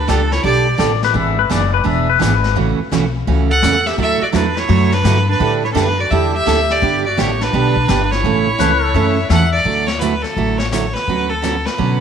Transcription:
Already playing: D4
0.08 C#2 D3 G3 D4 G4 A4, snare, hi-hat pedal
0.32 E4 C#5, snare
0.44 B1 D3 G3 D4 G4 A4 D5, brush sweep, kick
0.78 A1 D3 G3 D4 G4 A4 D5, snare, hi-hat pedal
1.03 B4, snare
1.14 G#1 E3 B3 D4 G#4 E5, brush sweep, kick
1.39 B4
1.50 F#1 E3 B3 D4 G#4 D5, snare, hi-hat pedal
1.74 B4
1.84 E1 E3 B3 D4 G#4 E5, brush sweep, kick
2.10 B4
2.19 G#1 E3 B3 D4 G#4 B4, snare, hi-hat pedal
2.44 snare
2.56 A1 C#3 E3 A3 C#4 F#4, brush sweep, kick
2.79 muted upright bass stroke
2.92 B1 C#3 E3 A3 C#4 F#4, snare, hi-hat pedal
3.27 C#2 C#3 E3 A3 C#4 F#4, brush sweep, kick
3.50 A4 F#5
3.62 E2 C#3 E3 A3 C#4 F#4, snare, hi-hat pedal
3.86 G4 E5, snare
3.98 D2 D3 F#3 A3 E4 F#4 A4 E5, brush sweep, kick
4.21 F#4 D5, muted upright bass stroke
4.32 E2 D3 F#3 A3 D4 E4 F#4 B4, snare, hi-hat pedal
4.56 E4 C#5, snare
4.68 F#2 D3 F#3 A3 E4 F#4, brush sweep, kick
4.92 D4 B4, snare
5.04 G2 D3 F#3 A3 E4 F#4, snare, hi-hat pedal
5.28 D4 B4
5.39 A2 D3 G3 D4 E4 A4, brush sweep, kick
5.64 E4 C#5
5.72 F#2 D3 G3 C#4 D4 E4 A4
5.76 D4 B4, snare, hi-hat pedal
5.99 F#4 D5
6.11 E2 D3 G3 D4 E4 G4 A4 E5, brush sweep, kick
6.34 G4 E5
6.45 D2 D3 G3 D4 E4 A4, snare, hi-hat pedal
6.70 G4 D5, snare
6.82 G1 D3 G3 B3 D4 G4, brush sweep, kick
7.06 F#4 D5
7.17 A1 D3 G3 B3 D4 G4 C#5, snare, hi-hat pedal
7.40 D4 B4, snare
7.53 B1 D3 G3 B3 D4 G4, brush sweep, kick
7.76 kick
7.88 G1 D3 G3 B3 D4 G4, snare, hi-hat pedal
8.12 E4 C#5, snare
8.24 A1 C#3 E3 A3 C#4 A4, brush sweep, kick
8.58 C#2 C#3 E3 A3 C#4 A4 B4, snare, hi-hat pedal
8.83 A4
8.94 F#2 C#3 E3 A3 C#4 A4 E5, brush sweep, kick
9.30 E2 C#3 E3 A3 C#4 A4 E5 F#5, snare, hi-hat pedal
9.52 D5
9.65 D2 D3 F#3 A3 E4 F#4, brush sweep, kick
9.87 C#5, snare
9.99 D3 F#3 A3 E4 F#4 B4, snare, hi-hat pedal
10.22 A4, snare
10.37 A1 D3 F#3 A3 E4 F#4, brush sweep, kick
10.58 C#5, snare
10.70 D3 F#3 A3 E4 C#5, snare, hi-hat pedal
10.75 F#4
10.93 B4, snare
11.08 D2 D3 F#3 B3 C#4 F#4, brush sweep, kick
11.29 A4
11.42 D3 F#3 B3 C#4 F#4, snare, hi-hat pedal
11.66 B4, snare
11.78 B2 D3 F#3 B3 C#4 F#4, brush sweep, kick

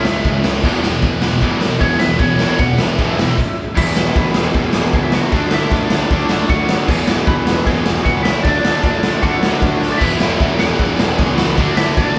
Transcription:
Already playing: C#2 C#3 G#3 C#4 E4 E5
0.05 C#3 G#3, snare
0.24 C#2 C#3 G#3, kick, ride
0.44 C#2 C#3 G#3, snare
0.62 E1 E2 B2 E3 G#3 B3 E4, kick, crash
0.83 E2 B2, snare
1.02 E1 E2 B2, kick, ride
1.22 E1 E2 B2, snare
1.41 E1 E2 B2 E3, kick, ride
1.60 E1 E2 B2, snare
1.80 E1 E2 B2 E3 C#5, kick, ride
1.99 E2 B2 E5, snare
2.19 E1 E2 B2 E3 G#3 B3 C#5, kick, ride
2.23 E4
2.39 E2 B2 E3, snare
2.58 E1 E2 B2 F#5, kick, ride
2.77 E1 E2 B2 E5, snare
2.98 E1 E2 B2 E3, kick, ride
3.19 E2 B2, snare
3.38 kick, crash
3.76 E1 E2 B2 E3 E4 E5, kick, crash
3.96 E1, snare
4.16 D2, kick, ride
4.34 E1 G#4, snare
4.38 G#5
4.54 E1 E2 B2 E3, kick, ride
4.73 E1 G#4 G#5, snare
4.93 C#2 G#4 G#5, kick, ride
5.03 E5
5.12 F#4 F#5, snare
5.32 D2 D3 A3 D4, kick, ride
5.51 D2 E4 E5, snare
5.71 B2 D4 D5, kick, ride
5.90 D2, snare
6.10 D2 D3 A3, kick, ride
6.15 D4
6.28 D2, snare
6.48 D2 F#4 F#5, kick, ride
6.69 snare
6.87 E1 E2 B2 G#4 G#5, kick, crash
6.91 E3
7.07 E1, snare
7.26 D2 B4 B5, kick, ride
7.45 E1, snare
7.66 E1 E2 B2 G#4 G#5, kick, ride
7.70 E3
7.86 E1, snare
8.03 C#2 F#4 F#5, kick, ride
8.23 E4 E5, snare
8.43 D2 D3 A3 D4 D5, kick, ride
8.48 D4
8.62 D2, snare
8.82 B2 D4 D5, kick, ride
9.01 D2, snare
9.22 D2 D3 A3 F#4 F#5, kick, ride
9.26 D4
9.41 D2, snare
9.61 D2, kick, ride
9.82 snare
9.92 D5
9.98 E1 E2 E3 G#3 B3 E4 E5, kick, crash
10.02 B2 E3 E4
10.20 E1, snare
10.40 D2, kick, ride
10.58 E1 G#4 G#5, snare
10.78 E1 E2 B2 E3, kick, ride
10.98 E1, snare
11.17 C#2 G#4 G#5, kick, ride
11.37 F#4 F#5, snare
11.57 D2 D3 A3 D4 F#4, kick, ride
11.76 D2 E4 E5, snare
11.96 B2 D4 D5, kick, ride

